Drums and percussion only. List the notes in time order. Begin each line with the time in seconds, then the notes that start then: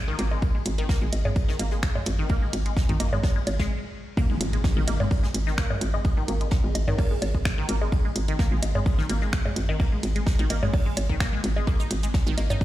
0.18 closed hi-hat, ride
0.31 low woodblock
0.42 kick, ride
0.65 closed hi-hat, ride
0.78 closed hi-hat
0.89 kick, snare, ride
1.13 closed hi-hat, ride, low woodblock
1.25 mid tom, high bongo
1.36 kick, ride
1.49 snare
1.59 closed hi-hat, ride, low woodblock
1.71 snare
1.83 finger snap, kick, snare, ride
1.96 mid tom, high bongo, low woodblock
2.05 closed hi-hat, ride
2.29 kick, ride
2.53 closed hi-hat, ride
2.66 closed hi-hat
2.77 kick, snare, ride
2.89 closed hi-hat, mid tom
3.00 closed hi-hat, ride, low woodblock
3.13 mid tom, high bongo
3.23 kick, snare, ride, high bongo
3.47 closed hi-hat, ride, high bongo
3.59 kick, snare, ride
4.17 kick, ride
4.41 closed hi-hat, ride
4.53 closed hi-hat
4.64 kick, snare, ride
4.88 closed hi-hat, ride, low woodblock
5.00 mid tom, high bongo
5.11 kick, ride
5.23 snare
5.34 closed hi-hat, ride
5.47 snare
5.58 finger snap, kick, snare, ride
5.70 mid tom, high bongo, low woodblock
5.81 closed hi-hat, ride
5.94 low woodblock
6.05 kick, ride
6.28 closed hi-hat, ride
6.41 closed hi-hat
6.51 kick, snare, ride
6.75 closed hi-hat, ride, low woodblock
6.87 mid tom, ride, high bongo
6.99 kick, open hi-hat, high bongo
7.22 closed hi-hat, ride, high bongo
7.34 kick, ride
7.45 finger snap, kick, snare, ride
7.68 closed hi-hat, ride
7.81 low woodblock
7.92 kick, ride
8.15 closed hi-hat, ride
8.28 closed hi-hat
8.39 kick, snare, ride
8.62 closed hi-hat, ride, low woodblock
8.75 mid tom, high bongo
8.86 kick, ride
8.99 snare
9.09 closed hi-hat, ride
9.21 snare
9.33 finger snap, kick, snare, ride
9.45 mid tom, high bongo, low woodblock
9.56 closed hi-hat, ride
9.69 low woodblock
9.80 kick, ride
10.03 closed hi-hat, ride
10.16 closed hi-hat
10.26 kick, snare, ride
10.39 closed hi-hat
10.50 closed hi-hat, ride, low woodblock
10.63 mid tom, ride, high bongo
10.74 kick, open hi-hat, high bongo
10.97 closed hi-hat, ride, high bongo
11.09 kick, ride
11.20 finger snap, kick, snare, ride
11.44 closed hi-hat, ride
11.56 low woodblock
11.67 kick, ride
11.80 cabasa
11.91 closed hi-hat, ride
12.03 closed hi-hat, cabasa
12.14 kick, snare, ride
12.27 cabasa
12.38 closed hi-hat, ride, low woodblock
12.50 mid tom, high bongo, cabasa
12.61 kick, ride